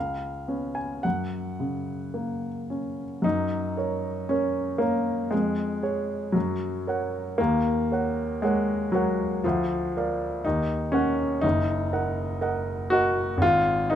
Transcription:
grand piano
Already playing: C#2 F5
0.48 B3 C#4
0.75 G#5
1.03 F#2 F#5
1.60 C#3
2.14 A#3
2.70 C#4
3.22 F#2 D#4
3.77 A#4 C#5
4.29 C#4 A#4 C#5
4.78 A#3 A#4 C#5
5.31 F2 G#3
5.82 G#4 C#5
6.32 F#2 F#3
6.87 A#4 C#5 F#5
7.38 D#2 A#3
7.92 A#4 C#5 F#5
8.42 G#3 A#4 C#5 F#5
8.92 F#3 A#4 C#5 F#5
9.44 D2 F3
9.97 A#4 D5 F5
10.45 D#2 D#4
10.92 C#4 A#4 C#5 F#5
11.41 F#1 D#4
11.93 A#4 D#5 F#5
12.41 A#4 D#5 F#5
12.90 F#4 A#4 D#5 F#5
13.37 G#1
13.42 F4
13.90 D#4 F4 B4

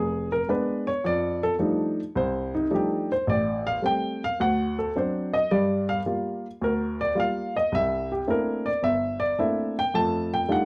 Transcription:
grand piano
Already playing: F1 G#4
0.32 A#4
0.48 G#3 B3 D4 B4
0.87 C#5
1.04 F2 D5
1.43 A4
1.59 F3 G3 A3 D4 D#4
2.15 C2 C5
2.55 D#4
2.71 F3 G3 A3 D4 D#4
2.75 G4
3.12 C5
3.27 A1 D5
3.67 F5
3.82 G3 A3 C4 G5
4.24 F5
4.40 D2 F#5
4.79 A4
4.96 F#3 C4 D4 C5
5.33 D#5
5.51 G2 G3 D5
5.89 F5
6.06 G3 A#3 F4
6.61 D2 A#4
7.01 D5
7.15 G3 A#3 F4
7.20 F5
7.56 D#5
7.72 C2 E5
8.12 G4
8.28 A3 A#3 C4 D4 E4 A#4
8.66 D5
8.83 G1 E5
9.20 D5
9.39 A3 A#3 C4 D4 E4 E5
9.79 G5
9.94 F2 A3 A5
10.34 G5
10.49 G3 A3 D4 D#4 F4 F#5

